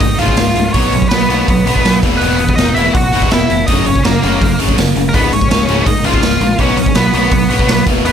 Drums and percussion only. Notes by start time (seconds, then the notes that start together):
0.00 kick, open hi-hat
0.19 open hi-hat
0.28 kick
0.37 snare, open hi-hat
0.56 open hi-hat
0.74 kick, open hi-hat
0.92 open hi-hat
1.02 kick
1.11 snare, open hi-hat
1.30 open hi-hat
1.48 kick, open hi-hat
1.67 open hi-hat
1.76 kick
1.85 snare, open hi-hat
2.03 kick, open hi-hat
2.21 open hi-hat
2.39 open hi-hat
2.49 kick
2.58 snare, open hi-hat
2.76 open hi-hat
2.95 kick, open hi-hat
3.13 open hi-hat
3.22 kick
3.31 snare, open hi-hat
3.50 open hi-hat
3.68 kick, open hi-hat
3.86 open hi-hat
3.96 kick
4.04 snare, open hi-hat
4.23 open hi-hat
4.42 kick, open hi-hat
4.60 open hi-hat
4.69 kick
4.78 snare, open hi-hat
4.96 open hi-hat
5.14 kick, open hi-hat
5.33 open hi-hat
5.41 kick
5.51 snare, open hi-hat
5.69 open hi-hat
5.86 kick, open hi-hat
6.04 open hi-hat
6.14 kick
6.23 snare, open hi-hat
6.41 open hi-hat
6.59 kick, open hi-hat
6.77 open hi-hat
6.86 kick
6.95 snare, open hi-hat
7.13 open hi-hat
7.31 kick, open hi-hat
7.50 open hi-hat
7.59 kick
7.69 snare, open hi-hat
7.87 kick, open hi-hat
8.05 open hi-hat